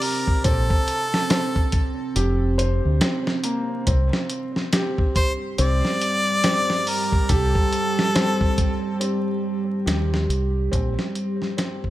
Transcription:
Already playing: C4 G4
0.02 A#4, open hi-hat
0.28 kick
0.44 A#1 C4 A4, kick, closed hi-hat
0.70 kick
0.88 closed hi-hat
1.14 snare
1.30 C4, snare, closed hi-hat
1.56 kick
1.72 kick, closed hi-hat
2.16 F1 G4, closed hi-hat
2.58 C5, closed hi-hat
2.85 D2
3.01 C4, snare, closed hi-hat
3.27 snare
3.44 A#3, closed hi-hat
3.87 C2 G3 C4 G4, kick, closed hi-hat
4.13 snare
4.30 closed hi-hat
4.56 snare
4.73 G4, snare, closed hi-hat
4.98 kick
5.16 C5, kick, closed hi-hat
5.58 C2 C4 D5, closed hi-hat
5.85 snare
6.02 closed hi-hat
6.44 C4, snare, closed hi-hat
6.70 snare
6.87 A#4, open hi-hat
7.12 kick
7.29 C2 G4 A4, kick, closed hi-hat
7.55 kick
7.73 closed hi-hat
7.99 snare
8.15 C4, snare, closed hi-hat
8.41 kick
8.58 kick, closed hi-hat
9.00 C4, closed hi-hat
9.86 D#2 G4, snare, closed hi-hat
10.14 snare
10.29 C2, closed hi-hat
10.72 A#1 C4, kick, closed hi-hat
10.99 snare
11.15 closed hi-hat
11.42 snare
11.57 C4, snare, closed hi-hat
11.84 kick

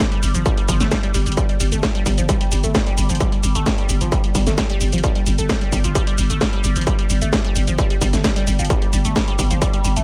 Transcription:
0.12 G3, closed hi-hat
0.23 G1 G3, open hi-hat, shaker
0.35 G1 F3, closed hi-hat, shaker
0.46 G3, kick, closed hi-hat, shaker
0.57 G3, closed hi-hat
0.68 G1 F3, kick, open hi-hat, shaker
0.80 G1 A3, snare, closed hi-hat, shaker
0.91 G3, kick, snare, closed hi-hat, shaker
1.03 G3, closed hi-hat
1.14 G1 G3, open hi-hat, shaker
1.26 G1 G3, closed hi-hat, shaker
1.32 closed hi-hat
1.37 G3, kick, closed hi-hat, shaker
1.49 G3, closed hi-hat
1.60 G1 G3, open hi-hat, shaker
1.72 G1 A3, closed hi-hat, shaker
1.83 G3, kick, snare, closed hi-hat, shaker
1.95 G3, closed hi-hat
2.06 G1 G3, kick, open hi-hat, shaker
2.18 G1 F3, closed hi-hat, shaker
2.29 G3, kick, closed hi-hat, shaker
2.41 G3, closed hi-hat
2.52 G1 G3, open hi-hat, shaker
2.64 G1 A3, closed hi-hat, shaker
2.75 G3, kick, snare, closed hi-hat, shaker
2.86 G3, closed hi-hat
2.98 G1 G3, open hi-hat, shaker
3.09 G1 F3, closed hi-hat, shaker
3.15 closed hi-hat
3.20 G3, kick, closed hi-hat, shaker
3.32 G3, closed hi-hat
3.43 G1 G3, open hi-hat, shaker
3.55 G1 A3, closed hi-hat, shaker
3.66 G3, kick, snare, closed hi-hat, shaker
3.78 G3, closed hi-hat
3.89 G1 G3, open hi-hat, shaker
4.01 G1 F3, closed hi-hat, shaker
4.12 G3, kick, closed hi-hat, shaker
4.24 G3, closed hi-hat
4.35 G1 G3, kick, open hi-hat, shaker
4.47 G1 A3, snare, closed hi-hat, shaker
4.58 G3, kick, snare, closed hi-hat, shaker
4.70 G3, closed hi-hat
4.81 G1 G3, open hi-hat, shaker
4.92 G1 F3, closed hi-hat, shaker
4.98 closed hi-hat
5.04 G3, kick, closed hi-hat, shaker
5.15 G3, closed hi-hat
5.26 G1 G3, open hi-hat, shaker
5.38 G1 A3, closed hi-hat, shaker
5.49 G3, kick, snare, closed hi-hat, shaker
5.61 G3, closed hi-hat
5.72 G1 G3, kick, open hi-hat, shaker
5.84 G1 F3, closed hi-hat, shaker
5.95 G3, kick, closed hi-hat, shaker
6.07 G3, closed hi-hat
6.18 G1 G3, open hi-hat, shaker
6.30 G1 A3, closed hi-hat, shaker
6.41 G3, kick, snare, closed hi-hat, shaker
6.53 G3, closed hi-hat
6.64 G1 G3, open hi-hat, shaker
6.76 G1 F3, closed hi-hat, shaker
6.81 closed hi-hat
6.87 G3, kick, closed hi-hat, shaker
6.99 G3, closed hi-hat
7.10 G1 G3, open hi-hat, shaker
7.22 G1 A3, closed hi-hat, shaker
7.33 G3, kick, snare, closed hi-hat, shaker
7.45 G3, closed hi-hat
7.56 G1 G3, open hi-hat, shaker
7.67 G1 F3, closed hi-hat, shaker
7.78 G3, kick, closed hi-hat, shaker
7.90 G3, closed hi-hat
8.01 G1 G3, kick, open hi-hat, shaker
8.13 G1 A3, snare, closed hi-hat, shaker
8.24 G3, kick, snare, closed hi-hat, shaker
8.36 G3, closed hi-hat
8.47 G1 G3, open hi-hat, shaker
8.59 G1 F3, closed hi-hat, shaker
8.65 closed hi-hat
8.70 G3, kick, closed hi-hat, shaker
8.82 G3, closed hi-hat
8.93 G1 G3, open hi-hat, shaker
9.05 G1 A3, closed hi-hat, shaker
9.16 G3, kick, snare, closed hi-hat, shaker
9.28 G3, closed hi-hat
9.39 G1 G3, kick, open hi-hat, shaker
9.51 G1 F3, closed hi-hat, shaker
9.62 G3, kick, closed hi-hat, shaker
9.73 G3, closed hi-hat
9.85 G1 G3, open hi-hat, shaker
9.96 G1 A3, closed hi-hat, shaker

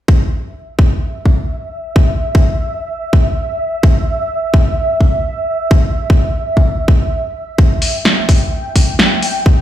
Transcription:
0.08 E5, kick
0.79 kick
1.26 kick
1.96 kick
2.35 kick
3.13 kick
3.83 kick
4.54 kick
5.01 kick
5.71 kick
6.10 kick
6.57 kick
6.88 kick
7.58 G5, kick
7.82 open hi-hat
8.05 snare
8.29 kick, open hi-hat
8.76 kick, open hi-hat
8.99 snare
9.23 open hi-hat
9.46 kick

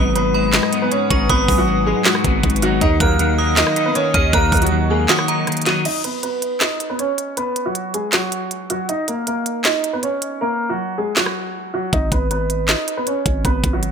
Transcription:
Already playing: G#1 G#2 F#3 B3 B4 F#5 G#5 D#6
0.15 G#2 B3 B4, closed hi-hat
0.34 G#3 B5
0.53 G#2 D#4 D#5, snare, clap, closed hi-hat
0.63 cross-stick
0.72 B3, closed hi-hat
0.82 B3 B4
0.91 G#2 C#4 C#5, closed hi-hat
1.10 G#1 D#4 C#6, kick, closed hi-hat
1.29 G#1 G#2 B3 B4 D#6, kick, closed hi-hat
1.48 G#1 F#3, kick, open hi-hat
1.58 F#3 F#4
1.68 G#2
1.86 G#3 G#4
2.05 G#2 F#3 F#4, snare, clap, closed hi-hat
2.15 cross-stick
2.24 G#1 B3, kick, closed hi-hat
2.43 G#1 G#2, kick, closed hi-hat
2.50 closed hi-hat
2.56 closed hi-hat
2.62 F#3 D#4 F#4, closed hi-hat
2.81 D#2 D#3 D#4 A#4 D#5 D#6, kick, closed hi-hat
3.00 D#2 F#3 A#3 A#4 F#6, kick, closed hi-hat
3.19 D#3 A#3 A#4, closed hi-hat
3.38 A#3 D#6
3.57 D#3 D#4 D#5, snare, clap, closed hi-hat
3.67 cross-stick
3.76 D#4, closed hi-hat
3.86 B3 B4
3.95 D#3 C#4 C#5, closed hi-hat
4.14 D#2 D#5 F6, kick, closed hi-hat
4.33 D#2 D#3 A#3 A#4 F#6, kick, closed hi-hat
4.52 D#2 F#3, kick, closed hi-hat, open hi-hat
4.57 closed hi-hat
4.62 F#3 F#4, closed hi-hat
4.67 closed hi-hat
4.71 D#3
4.90 G#3 A#3 G#4
5.09 D#3 F#3 F#4 D#6, snare, clap, closed hi-hat
5.19 cross-stick
5.28 D#4 A#5, closed hi-hat
5.47 D#3, cross-stick, closed hi-hat
5.52 closed hi-hat
5.57 closed hi-hat
5.62 closed hi-hat
5.66 F#3 F#4 D#5, snare, closed hi-hat
5.85 D#4 D#5, closed hi-hat, crash
6.04 B3 B4, closed hi-hat
6.23 B3 B4, closed hi-hat
6.42 closed hi-hat
6.61 D#4 D#5, snare, clap, closed hi-hat
6.80 closed hi-hat
6.90 B3 B4
6.99 C#4 C#5, closed hi-hat
7.18 closed hi-hat
7.37 B3 B4, closed hi-hat
7.56 closed hi-hat
7.66 F#3 F#4
7.75 closed hi-hat
7.94 G#3 G#4, closed hi-hat
8.12 F#3 F#4, snare, clap, closed hi-hat
8.32 closed hi-hat
8.51 closed hi-hat
8.70 F#3 F#4, closed hi-hat
8.89 D#4 D#5, closed hi-hat
9.08 A#3 A#4, closed hi-hat
9.27 A#3 A#4, closed hi-hat
9.46 closed hi-hat
9.64 D#4 D#5, snare, clap, closed hi-hat
9.84 closed hi-hat
9.93 B3 B4
10.03 C#4 C#5, closed hi-hat
10.22 closed hi-hat
10.41 A#3 A#4
10.69 F#3 F#4
10.98 G#3 G#4
11.16 F#3 F#4, snare, clap
11.26 cross-stick
11.74 F#3 F#4
11.93 G#1 D#4 D#5, kick, closed hi-hat
12.12 G#1 B3 B4, kick, closed hi-hat
12.31 B3 B4, closed hi-hat
12.50 closed hi-hat
12.68 D#4 D#5, snare, clap, closed hi-hat
12.88 closed hi-hat
12.97 B3 B4
13.07 C#4 C#5, closed hi-hat
13.26 G#1, kick, closed hi-hat
13.45 G#1 B3 B4, kick, closed hi-hat
13.64 G#1, kick, closed hi-hat
13.73 F#3 F#4
13.83 closed hi-hat

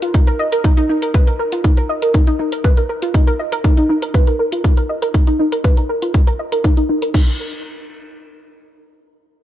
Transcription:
0.02 F4, closed hi-hat
0.14 D#4, kick, closed hi-hat
0.27 A#4, closed hi-hat
0.39 D#5
0.52 A#4, closed hi-hat
0.64 D#4, kick, closed hi-hat
0.77 D#4, closed hi-hat
0.89 D#4
1.02 A#4, closed hi-hat
1.14 B4, kick, closed hi-hat
1.27 A#4, closed hi-hat
1.39 A#4
1.52 F4, closed hi-hat
1.64 D#4, kick, closed hi-hat
1.77 A#4, closed hi-hat
1.89 D#5
2.02 A#4, closed hi-hat
2.14 D#4, kick, closed hi-hat
2.27 D#4, closed hi-hat
2.39 D#4
2.52 A#4, closed hi-hat
2.64 B4, kick, closed hi-hat
2.77 A#4, closed hi-hat
2.89 A#4
3.02 F4, closed hi-hat
3.14 D#4, kick, closed hi-hat
3.27 A#4, closed hi-hat
3.39 D#5
3.52 A#4, closed hi-hat
3.64 D#4, kick, closed hi-hat
3.77 D#4, closed hi-hat
3.89 D#4
4.02 A#4, closed hi-hat
4.14 B4, kick, closed hi-hat
4.27 A#4, closed hi-hat
4.39 A#4
4.52 F4, closed hi-hat
4.64 D#4, kick, closed hi-hat
4.77 A#4, closed hi-hat
4.89 D#5
5.02 A#4, closed hi-hat
5.14 D#4, kick, closed hi-hat
5.27 D#4, closed hi-hat
5.39 D#4
5.52 A#4, closed hi-hat
5.64 B4, kick, closed hi-hat
5.77 A#4, closed hi-hat
5.89 A#4
6.02 F4, closed hi-hat
6.14 D#4, kick, closed hi-hat
6.27 A#4, closed hi-hat
6.39 D#5
6.52 A#4, closed hi-hat
6.64 D#4, kick, closed hi-hat
6.77 D#4, closed hi-hat
6.89 D#4
7.02 A#4, closed hi-hat
7.14 D#4, kick, crash

